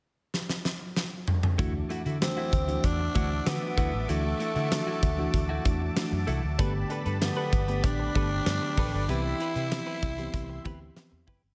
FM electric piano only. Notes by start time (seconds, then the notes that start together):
1.58 E3 A3 D4 F#4
2.21 E3 A3 D4 F#4
2.68 E3 A3 D4 F#4
3.15 E3 A3 D4 F#4
3.46 E3 A3 D4 F#4
4.09 E3 A3 D4 F#4
4.71 E3 A3 D4 F#4
5.18 E3 A3 D4 F#4
5.65 E3 A3 D4 F#4
5.96 E3 A3 D4 F#4
6.58 D3 A3 B3 G4
7.21 D3 A3 B3 G4
7.68 D3 A3 B3 G4
8.15 D3 A3 B3 G4
8.46 D3 A3 B3 G4
9.09 E3 B3 C4 G4
9.71 E3 B3 C4 G4
10.18 E3 B3 C4 G4
10.65 E3 B3 C4 G4
10.96 E3 B3 C4 G4